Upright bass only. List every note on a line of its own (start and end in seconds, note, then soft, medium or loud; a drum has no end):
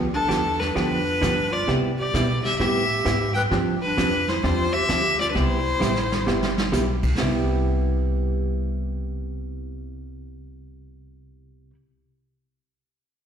0.00 0.29 D2 medium
0.30 0.74 E2 medium
0.76 1.20 F2 medium
1.22 1.66 G2 medium
1.68 2.12 C3 medium
2.14 2.42 B2 medium
2.45 muted upright bass stroke soft
2.59 3.04 A2 medium
3.06 3.50 G#2 medium
3.51 3.95 G2 medium
3.97 4.41 F2 medium
4.44 4.88 E2 medium
4.89 5.33 D2 medium
5.35 5.79 C2 medium
5.81 6.25 A1 medium
6.27 6.71 G1 medium
6.72 7.17 B1 medium
7.20 11.70 C2 medium